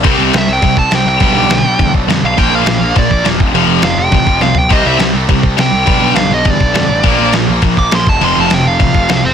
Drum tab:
CC |x-x-x-x-|x-x-x-x-|x-x-x-x-|x-x-x---|
SD |--o---o-|--o---o-|--o---o-|--o---o-|
FT |--------|--------|--------|-------o|
BD |o---oo--|o---oo--|o---oo-o|----oo--|

CC |x-x-x-x-|x-x-x-x-|x-x-x-x-|x-x-x-x-|
SD |--o---o-|--o---o-|--o---o-|--o---o-|
FT |--------|--------|--------|--------|
BD |o---oo--|o---oo--|o---oo-o|----oo--|